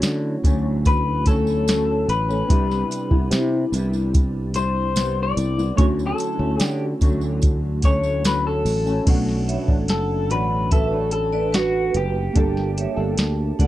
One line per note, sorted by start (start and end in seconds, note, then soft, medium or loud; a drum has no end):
0.00 0.36 D3 medium
0.00 0.43 F#3 medium
0.00 0.44 A3 medium
0.00 2.45 A3 medium
0.00 0.44 C#4 medium
0.00 2.45 C#4 medium
0.00 2.46 E4 medium
0.00 2.47 F#4 medium
0.00 snare loud
0.00 closed hi-hat medium
0.00 tambourine medium
0.43 2.04 D2 loud
0.43 1.24 D3 medium
0.43 1.25 F#3 medium
0.43 1.26 A3 medium
0.43 1.27 C#4 medium
0.43 kick medium
0.43 closed hi-hat medium
0.43 tambourine soft
0.85 1.27 B4 loud
0.85 kick loud
0.85 closed hi-hat medium
0.85 tambourine soft
1.25 1.66 D3 medium
1.25 1.67 F#3 medium
1.25 1.68 A3 medium
1.25 1.68 C#4 medium
1.25 2.09 A4 loud
1.25 kick medium
1.25 closed hi-hat medium
1.25 tambourine medium
1.47 tambourine soft
1.67 2.29 D3 medium
1.67 2.29 F#3 medium
1.67 2.29 A3 medium
1.67 2.27 C#4 medium
1.67 snare loud
1.67 closed hi-hat medium
1.67 tambourine medium
2.08 2.41 A1 medium
2.08 3.28 B4 loud
2.08 closed hi-hat medium
2.08 tambourine soft
2.28 2.49 F#3 soft
2.28 2.49 A3 medium
2.28 2.49 C#4 medium
2.28 tambourine soft
2.47 2.83 C2 loud
2.47 3.11 C3 medium
2.47 3.11 G3 medium
2.47 3.11 B3 medium
2.47 5.73 C4 medium
2.47 5.74 D4 medium
2.47 3.09 E4 medium
2.47 5.75 E4 medium
2.47 kick loud
2.47 closed hi-hat medium
2.47 tambourine soft
2.52 5.76 G4 medium
2.71 snare soft
2.71 tambourine soft
2.91 closed hi-hat medium
2.91 tambourine soft
3.11 3.28 C2 medium
3.11 3.72 G3 medium
3.11 3.73 B3 medium
3.11 3.73 E4 medium
3.11 kick medium
3.31 3.64 C3 loud
3.31 snare loud
3.31 closed hi-hat loud
3.31 tambourine medium
3.72 5.33 C2 medium
3.72 4.53 C3 medium
3.72 4.54 G3 medium
3.72 4.56 B3 medium
3.72 4.56 E4 medium
3.72 closed hi-hat medium
3.72 tambourine soft
3.93 tambourine soft
4.14 kick loud
4.14 closed hi-hat medium
4.14 tambourine soft
4.54 4.94 C3 medium
4.54 4.95 G3 medium
4.54 4.97 E4 medium
4.54 5.22 C5 medium
4.54 closed hi-hat medium
4.54 tambourine medium
4.95 5.57 C3 medium
4.95 5.58 G3 medium
4.95 5.58 B3 medium
4.95 5.56 E4 medium
4.95 snare loud
4.95 closed hi-hat medium
4.95 tambourine medium
5.23 5.74 D5 loud
5.37 5.70 C2 medium
5.37 closed hi-hat medium
5.37 tambourine soft
5.57 5.77 G3 soft
5.57 5.78 B3 medium
5.57 5.78 E4 medium
5.57 tambourine soft
5.76 6.11 D2 loud
5.76 6.39 D3 medium
5.76 6.40 F#3 medium
5.76 9.02 A3 medium
5.76 6.39 A3 medium
5.76 9.03 C#4 medium
5.76 6.38 C#4 medium
5.76 9.03 E4 medium
5.76 5.85 C#5 medium
5.76 kick loud
5.76 closed hi-hat medium
5.76 tambourine soft
5.81 9.04 F#4 medium
5.99 tambourine soft
6.07 6.63 A4 medium
6.18 closed hi-hat medium
6.18 tambourine soft
6.39 6.56 D2 medium
6.39 7.00 F#3 soft
6.39 7.01 A3 medium
6.39 7.01 C#4 medium
6.60 6.93 D3 medium
6.60 6.84 G4 medium
6.60 snare loud
6.60 closed hi-hat medium
6.60 tambourine medium
7.01 8.62 D2 medium
7.01 7.83 D3 medium
7.01 7.84 F#3 medium
7.01 7.84 A3 medium
7.01 7.84 C#4 medium
7.01 kick loud
7.01 closed hi-hat medium
7.01 tambourine soft
7.21 tambourine soft
7.42 kick loud
7.42 closed hi-hat medium
7.42 tambourine soft
7.82 8.23 D3 medium
7.82 8.24 F#3 medium
7.82 8.25 A3 medium
7.82 8.25 C#4 medium
7.82 8.23 C#5 loud
7.82 kick medium
7.82 closed hi-hat medium
7.82 tambourine soft
8.03 tambourine soft
8.24 8.86 D3 medium
8.24 8.87 F#3 medium
8.24 8.86 A3 medium
8.24 8.85 C#4 medium
8.24 8.46 B4 loud
8.24 snare loud
8.24 closed hi-hat medium
8.24 tambourine medium
8.47 9.04 A4 medium
8.65 8.98 A1 medium
8.65 open hi-hat soft
8.65 tambourine soft
8.86 9.06 F#3 soft
8.86 9.06 A3 soft
8.86 9.07 C#4 medium
8.86 tambourine soft
9.05 9.56 B1 loud
9.05 9.68 B2 medium
9.05 9.69 F#3 medium
9.05 12.31 A3 medium
9.05 9.68 A3 medium
9.05 12.32 C#4 medium
9.05 12.32 D4 medium
9.05 9.66 D4 medium
9.05 kick loud
9.05 closed hi-hat medium
9.05 crash medium
9.09 12.33 F#5 medium
9.28 snare soft
9.48 9.68 C#5 medium
9.48 9.68 E5 medium
9.48 closed hi-hat medium
9.68 9.89 A1 medium
9.68 10.29 F#3 soft
9.68 10.30 A3 soft
9.68 10.30 D4 medium
9.68 kick medium
9.88 10.31 F#1 medium
9.88 10.31 A4 medium
9.88 snare loud
9.88 closed hi-hat medium
10.29 11.91 A1 medium
10.29 10.92 B2 medium
10.29 10.92 F#3 medium
10.29 10.92 A3 medium
10.29 10.90 D4 medium
10.29 10.72 B4 loud
10.29 10.50 D5 medium
10.29 10.50 F#5 medium
10.29 closed hi-hat medium
10.71 11.11 A4 loud
10.71 10.91 B4 medium
10.71 10.91 E5 medium
10.71 kick medium
10.71 closed hi-hat medium
10.91 11.34 F#3 soft
10.91 11.32 A3 soft
10.91 11.31 D4 soft
11.11 11.51 A4 medium
11.11 closed hi-hat medium
11.32 12.35 A3 soft
11.32 12.35 D4 soft
11.32 11.51 B4 medium
11.32 11.52 D5 medium
11.53 12.12 F#4 medium
11.53 11.93 F#4 medium
11.53 12.11 B4 medium
11.53 snare loud
11.53 closed hi-hat medium
11.94 12.28 F#1 medium
11.94 13.67 G4 medium
11.94 closed hi-hat medium
12.33 12.85 G1 loud
12.33 12.97 G3 medium
12.33 13.67 A#3 medium
12.33 12.97 A#3 medium
12.33 13.67 D4 medium
12.33 12.97 D4 medium
12.33 13.67 G4 medium
12.33 12.95 A4 medium
12.33 kick loud
12.33 closed hi-hat medium
12.38 13.67 A5 medium
12.57 snare soft
12.77 12.97 C#5 medium
12.77 12.97 E5 medium
12.77 closed hi-hat medium
12.96 13.14 G1 medium
12.96 13.58 A#3 soft
12.96 13.59 D4 medium
12.96 13.59 A4 medium
13.17 13.51 D2 medium
13.17 snare loud
13.17 closed hi-hat medium
13.59 13.67 C#2 medium
13.59 13.67 G3 medium
13.59 13.67 A#3 medium
13.59 13.67 D4 medium
13.59 13.67 A4 medium
13.59 13.67 D5 medium
13.59 13.67 F#5 medium
13.59 kick medium
13.59 closed hi-hat medium